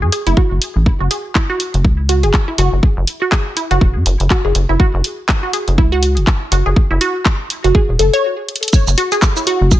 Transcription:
0.02 0.10 F#2 medium
0.02 0.07 G#4 medium
0.12 0.19 G#4 medium
0.12 open hi-hat medium
0.27 0.35 F#1 medium
0.27 0.34 E4 loud
0.27 open hi-hat soft
0.37 0.43 F#4 medium
0.37 kick loud
0.51 0.59 F#1 medium
0.62 open hi-hat medium
0.76 0.94 A1 medium
0.86 kick loud
1.00 1.08 F#1 loud
1.00 1.05 F#4 medium
1.11 1.17 G#4 medium
1.11 open hi-hat medium
1.35 1.39 E4 medium
1.35 kick loud
1.35 clap medium
1.50 1.57 F#4 loud
1.60 open hi-hat medium
1.74 1.86 F#1 medium
1.74 open hi-hat soft
1.85 2.25 C#2 medium
1.85 kick loud
2.09 2.16 F#4 medium
2.09 open hi-hat medium
2.23 2.31 F#1 medium
2.23 2.28 G#4 medium
2.23 open hi-hat soft
2.34 kick loud
2.34 clap medium
2.48 2.51 E4 medium
2.58 2.69 F#1 loud
2.58 2.68 F#4 loud
2.58 open hi-hat medium
2.72 2.81 F#1 medium
2.83 kick loud
2.97 3.05 F#1 loud
3.07 open hi-hat medium
3.22 3.26 F#4 medium
3.32 3.39 G#4 medium
3.32 kick loud
3.32 clap medium
3.57 3.61 E4 medium
3.57 open hi-hat medium
3.71 3.79 F#1 medium
3.71 3.78 F#4 loud
3.71 open hi-hat soft
3.81 3.97 E1 medium
3.81 kick loud
3.95 4.03 F#2 medium
4.06 4.17 F#1 medium
4.06 open hi-hat medium
4.20 4.28 F#1 medium
4.20 open hi-hat soft
4.30 4.37 F#4 medium
4.30 kick loud
4.30 clap medium
4.45 4.53 F#1 loud
4.45 4.49 G#4 medium
4.55 4.66 F#1 medium
4.55 open hi-hat medium
4.69 4.77 F#1 medium
4.69 4.72 E4 medium
4.80 4.89 F#4 loud
4.80 kick loud
4.94 5.02 F#1 loud
5.04 open hi-hat medium
5.29 kick loud
5.29 clap medium
5.43 5.48 F#4 medium
5.53 5.60 G#4 medium
5.53 open hi-hat medium
5.68 5.80 F#1 medium
5.68 open hi-hat soft
5.78 6.18 C#2 medium
5.78 5.82 E4 medium
5.78 kick loud
5.92 5.99 F#4 loud
6.03 open hi-hat medium
6.17 6.25 F#1 medium
6.17 open hi-hat soft
6.27 kick loud
6.27 clap medium
6.52 6.63 F#1 loud
6.52 6.58 F#4 medium
6.52 open hi-hat medium
6.66 6.74 F#1 medium
6.66 6.71 G#4 medium
6.76 kick loud
6.91 6.99 F#1 loud
6.91 6.93 E4 medium
7.01 7.11 F#4 loud
7.01 open hi-hat medium
7.26 kick loud
7.26 clap medium
7.50 open hi-hat medium
7.64 7.72 F#1 medium
7.64 7.69 F#4 medium
7.64 open hi-hat soft
7.75 7.81 G#4 medium
7.75 kick loud
7.89 7.97 E1 medium
7.99 8.10 F#1 medium
7.99 8.06 A4 medium
7.99 open hi-hat medium
8.13 8.18 C#5 loud
8.13 open hi-hat soft
8.49 closed hi-hat medium
8.56 closed hi-hat medium
8.63 closed hi-hat medium
8.68 closed hi-hat medium
8.73 kick loud
8.73 shaker medium
8.87 8.95 F#1 loud
8.87 shaker soft
8.98 9.04 F#4 medium
8.98 open hi-hat medium
9.12 9.17 G#4 medium
9.12 open hi-hat soft
9.12 shaker soft
9.22 kick loud
9.22 clap loud
9.22 shaker medium
9.36 9.39 E4 medium
9.36 shaker soft
9.47 9.57 F#4 loud
9.47 open hi-hat medium
9.61 9.73 F#1 medium
9.71 9.80 C#2 medium
9.71 kick loud
9.71 shaker medium

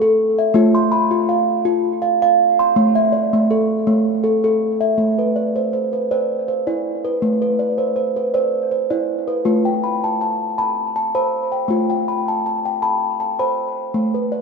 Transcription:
0.02 0.38 A4 medium
0.39 0.75 E5 medium
0.54 1.98 A3 loud
0.54 0.92 F4 medium
0.75 1.29 C6 medium
0.92 1.48 B5 medium
1.11 1.48 F4 medium
1.29 1.85 F5 medium
1.65 2.02 F4 medium
2.02 2.21 F5 medium
2.22 2.59 F5 medium
2.59 2.96 C6 medium
2.76 3.32 A3 medium
2.95 3.50 E5 medium
3.12 3.69 D5 medium
3.33 3.70 A3 medium
3.51 4.07 A4 medium
3.87 4.24 A3 medium
4.24 4.43 A4 medium
4.44 4.81 A4 medium
4.81 5.18 E5 medium
4.98 6.43 A3 medium
5.19 5.73 B4 medium
5.36 5.92 D5 medium
5.56 5.72 C5 medium
5.73 6.10 C5 medium
5.93 6.47 B4 soft
6.11 6.47 C5 medium
6.11 6.66 D5 medium
6.48 7.04 C5 medium
6.67 7.04 E4 medium
6.67 7.22 D5 medium
7.05 7.41 B4 medium
7.22 7.59 A3 medium
7.42 7.97 B4 medium
7.59 8.16 D5 medium
7.78 7.95 C5 medium
7.96 8.33 C5 medium
8.16 8.71 B4 medium
8.34 8.70 C5 medium
8.34 8.89 D5 medium
8.71 9.28 C5 soft
8.90 9.28 E4 medium
8.90 9.46 D5 medium
9.27 9.65 B4 medium
9.45 10.91 A3 medium
9.45 9.83 F4 medium
9.65 10.21 G5 medium
9.84 10.40 B5 soft
10.04 10.20 A5 medium
10.21 10.57 A5 medium
10.58 10.95 A5 medium
10.58 11.14 B5 medium
10.96 11.53 A5 medium
11.15 11.52 C5 medium
11.15 11.70 B5 soft
11.52 11.89 G5 soft
11.68 13.15 A3 medium
11.68 12.08 F4 medium
11.90 12.45 G5 soft
12.08 12.65 B5 soft
12.28 12.45 A5 medium
12.46 12.81 A5 soft
12.65 13.20 G5 soft
12.82 13.19 A5 medium
12.82 13.38 B5 medium
13.20 13.77 A5 soft
13.39 13.77 C5 medium
13.39 13.95 B5 medium
13.94 14.41 A3 medium
14.14 14.41 B4 medium
14.32 14.41 D5 medium

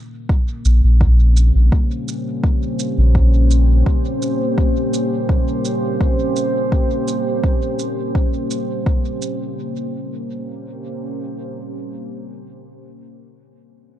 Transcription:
0.00 9.57 A#3 medium
0.00 9.58 C#4 medium
0.00 0.44 D#4 medium
0.00 9.58 G4 medium
0.00 9.58 C5 medium
0.29 kick loud
0.65 0.81 A#1 medium
0.65 shaker medium
0.84 1.51 A#1 medium
1.01 kick loud
1.37 shaker medium
1.55 1.70 A#1 medium
1.72 kick loud
2.08 shaker medium
2.44 kick loud
2.79 shaker medium
2.98 3.83 A#1 medium
3.15 kick loud
3.51 shaker soft
3.86 kick loud
4.22 shaker soft
4.58 kick loud
4.94 shaker soft
5.29 kick loud
5.65 shaker soft
6.01 kick loud
6.36 shaker soft
6.72 kick loud
7.08 shaker soft
7.44 kick loud
7.79 shaker soft
8.15 kick medium
8.51 shaker soft
8.86 kick medium
9.22 shaker soft
9.59 12.62 A#3 medium
9.69 12.73 C#4 medium
9.81 12.84 G4 medium
9.91 12.94 C5 medium

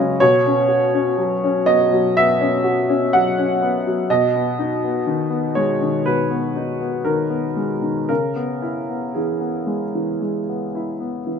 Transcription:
0.00 0.22 C#3 soft
0.00 0.22 F#3 soft
0.00 0.22 G#3 soft
0.00 0.23 C#4 soft
0.00 0.22 B4 medium
0.00 0.20 C#5 medium
0.00 0.20 D#5 medium
0.20 2.12 B2 medium
0.20 1.67 C#5 medium
0.46 0.84 C#4 soft
0.68 1.08 F#4 soft
0.94 1.33 C#4 soft
1.18 1.57 F#3 soft
1.44 1.82 C#4 soft
1.66 2.05 B3 soft
1.66 2.15 D#5 medium
1.92 2.30 F#3 soft
2.17 2.55 B3 medium
2.17 3.13 E5 medium
2.41 2.79 C#4 medium
2.64 3.02 F#4 soft
2.89 3.27 C#4 soft
3.13 3.52 F#3 soft
3.13 4.09 F#5 medium
3.38 3.76 C#4 soft
3.62 4.00 B3 medium
3.87 4.10 F#3 soft
4.10 6.02 B2 medium
4.10 5.56 D#5 medium
4.35 4.74 B3 soft
4.59 4.98 D#4 soft
4.84 5.22 B3 soft
5.07 5.46 D#3 soft
5.30 5.70 B3 soft
5.55 5.96 G#3 soft
5.55 6.05 C#5 medium
5.82 6.21 D#3 soft
6.06 8.05 B2 soft
6.06 7.05 B4 medium
6.31 6.70 B3 soft
6.56 6.96 D#4 soft
6.81 7.21 B3 soft
7.05 7.46 D#3 soft
7.05 8.07 A#4 medium
7.30 7.72 B3 soft
7.57 7.98 G#3 soft
7.82 8.09 D#3 soft
8.09 10.19 C#3 soft
8.09 9.16 A#4 medium
8.36 8.78 B3 soft
8.62 9.05 E4 soft
8.89 9.32 B3 soft
9.15 9.59 E3 soft
9.15 11.28 G#4 soft
9.40 9.84 B3 soft
9.67 10.11 G#3 soft
9.95 10.38 E3 soft
10.22 10.65 G#3 soft
10.49 10.91 B3 soft
10.75 11.18 E4 soft
11.00 11.39 B3 soft
11.27 11.39 E3 soft

